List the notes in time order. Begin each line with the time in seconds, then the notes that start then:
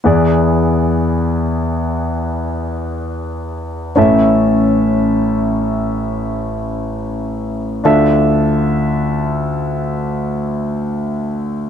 0.04 E2 E3 B3 E4 G#4 D5
3.96 A1 A2 C#4 E4 A4 E5
7.84 D2 D3 D4 F4 A4 E5